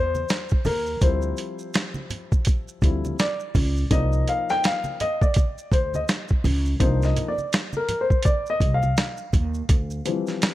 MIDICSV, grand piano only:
0, 0, Header, 1, 2, 480
1, 0, Start_track
1, 0, Tempo, 722892
1, 676, Time_signature, 4, 2, 24, 8
1, 6999, End_track
2, 0, Start_track
2, 0, Title_t, "Grand piano"
2, 0, Program_c, 0, 0
2, 0, Note_on_c, 0, 72, 111
2, 437, Note_on_c, 0, 70, 86
2, 452, Note_off_c, 0, 72, 0
2, 675, Note_on_c, 0, 55, 54
2, 676, Note_on_c, 0, 53, 58
2, 679, Note_on_c, 0, 60, 47
2, 679, Note_on_c, 0, 72, 82
2, 681, Note_on_c, 0, 64, 62
2, 684, Note_off_c, 0, 70, 0
2, 1371, Note_off_c, 0, 72, 0
2, 1866, Note_off_c, 0, 53, 0
2, 1869, Note_off_c, 0, 55, 0
2, 1870, Note_off_c, 0, 64, 0
2, 1871, Note_off_c, 0, 60, 0
2, 1876, Note_on_c, 0, 53, 50
2, 1879, Note_on_c, 0, 55, 46
2, 1880, Note_on_c, 0, 64, 56
2, 1881, Note_on_c, 0, 60, 47
2, 2092, Note_off_c, 0, 53, 0
2, 2094, Note_off_c, 0, 55, 0
2, 2094, Note_off_c, 0, 64, 0
2, 2095, Note_off_c, 0, 60, 0
2, 2121, Note_on_c, 0, 74, 91
2, 2572, Note_off_c, 0, 74, 0
2, 2592, Note_on_c, 0, 53, 55
2, 2596, Note_on_c, 0, 58, 48
2, 2596, Note_on_c, 0, 74, 52
2, 2598, Note_on_c, 0, 63, 62
2, 2603, Note_on_c, 0, 75, 91
2, 2847, Note_off_c, 0, 75, 0
2, 2847, Note_on_c, 0, 77, 90
2, 2989, Note_off_c, 0, 77, 0
2, 2991, Note_on_c, 0, 79, 104
2, 3084, Note_off_c, 0, 79, 0
2, 3090, Note_on_c, 0, 77, 95
2, 3288, Note_off_c, 0, 53, 0
2, 3289, Note_off_c, 0, 58, 0
2, 3289, Note_off_c, 0, 74, 0
2, 3290, Note_off_c, 0, 63, 0
2, 3326, Note_on_c, 0, 75, 93
2, 3330, Note_off_c, 0, 77, 0
2, 3466, Note_on_c, 0, 74, 85
2, 3468, Note_off_c, 0, 75, 0
2, 3803, Note_on_c, 0, 72, 80
2, 3809, Note_off_c, 0, 74, 0
2, 3947, Note_off_c, 0, 72, 0
2, 3953, Note_on_c, 0, 75, 77
2, 4006, Note_off_c, 0, 75, 0
2, 4512, Note_on_c, 0, 53, 59
2, 4517, Note_on_c, 0, 58, 51
2, 4517, Note_on_c, 0, 62, 50
2, 4517, Note_on_c, 0, 72, 79
2, 4520, Note_on_c, 0, 63, 65
2, 4679, Note_on_c, 0, 75, 78
2, 4681, Note_off_c, 0, 72, 0
2, 4826, Note_off_c, 0, 75, 0
2, 4837, Note_on_c, 0, 74, 80
2, 4851, Note_off_c, 0, 53, 0
2, 4853, Note_off_c, 0, 58, 0
2, 4853, Note_off_c, 0, 62, 0
2, 4855, Note_off_c, 0, 63, 0
2, 5134, Note_off_c, 0, 74, 0
2, 5157, Note_on_c, 0, 70, 83
2, 5319, Note_on_c, 0, 72, 78
2, 5321, Note_off_c, 0, 70, 0
2, 5478, Note_on_c, 0, 74, 91
2, 5482, Note_off_c, 0, 72, 0
2, 5642, Note_off_c, 0, 74, 0
2, 5643, Note_on_c, 0, 75, 92
2, 5804, Note_off_c, 0, 75, 0
2, 5805, Note_on_c, 0, 77, 90
2, 6675, Note_on_c, 0, 53, 59
2, 6678, Note_on_c, 0, 55, 50
2, 6680, Note_on_c, 0, 60, 47
2, 6684, Note_on_c, 0, 52, 62
2, 6974, Note_off_c, 0, 77, 0
2, 6999, Note_off_c, 0, 52, 0
2, 6999, Note_off_c, 0, 53, 0
2, 6999, Note_off_c, 0, 55, 0
2, 6999, Note_off_c, 0, 60, 0
2, 6999, End_track
0, 0, End_of_file